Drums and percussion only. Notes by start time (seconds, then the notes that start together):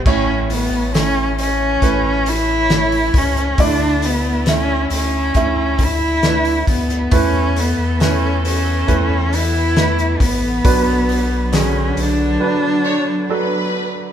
0.06 kick, crash
0.50 hi-hat pedal, open hi-hat
0.94 snare, hi-hat pedal, open hi-hat
1.38 hi-hat pedal, open hi-hat
1.82 kick, hi-hat pedal, open hi-hat
2.26 hi-hat pedal, open hi-hat
2.70 snare, hi-hat pedal, open hi-hat
2.92 open hi-hat
3.14 kick, hi-hat pedal, open hi-hat
3.36 hi-hat pedal
3.58 kick, hi-hat pedal, open hi-hat
4.02 hi-hat pedal, open hi-hat
4.46 snare, hi-hat pedal, open hi-hat
4.90 hi-hat pedal, open hi-hat
5.34 kick, hi-hat pedal, open hi-hat
5.78 kick, hi-hat pedal, open hi-hat
6.23 snare, hi-hat pedal, open hi-hat
6.45 open hi-hat
6.67 kick, hi-hat pedal, open hi-hat
6.89 hi-hat pedal
7.11 kick, hi-hat pedal, open hi-hat
7.56 hi-hat pedal, open hi-hat
8.00 snare, hi-hat pedal, open hi-hat
8.45 hi-hat pedal, open hi-hat
8.88 kick, hi-hat pedal, open hi-hat
9.33 hi-hat pedal, open hi-hat
9.54 open hi-hat
9.76 snare, hi-hat pedal, open hi-hat
9.98 hi-hat pedal
10.20 kick, hi-hat pedal, open hi-hat
10.65 kick, hi-hat pedal, open hi-hat
11.09 hi-hat pedal, open hi-hat
11.53 snare, hi-hat pedal, open hi-hat
11.97 hi-hat pedal, open hi-hat